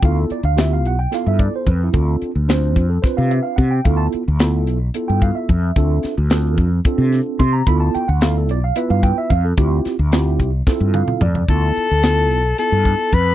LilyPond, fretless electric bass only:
\new Staff \with { instrumentName = "Fretless electric bass" } { \clef bass \time 7/8 \key d \dorian \tempo 4 = 110 d,8 r16 d,8. b,,8 r16 g,8 r16 f,8 | d,8 r16 d,8. f,8 r16 c8 r16 c8 | d,8 r16 d,8. b,,8 r16 g,8 r16 f,8 | d,8 r16 d,8. f,8 r16 c8 r16 c8 |
d,8 r16 d,8. b,,8 r16 g,8 r16 f,8 | d,8 r16 d,8. c,8 r16 g,8 r16 f,8 | d,8 r16 d,8. b,,8 r16 g,8 r16 f,8 | }